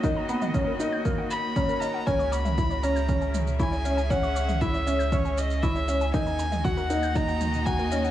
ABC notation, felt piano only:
X:1
M:4/4
L:1/8
Q:1/4=118
K:C#dor
V:1 name="Felt piano"
D B, C D A,2 C2 | C2 E C C2 E C | C2 E C C2 E C | D2 F D D2 F C |]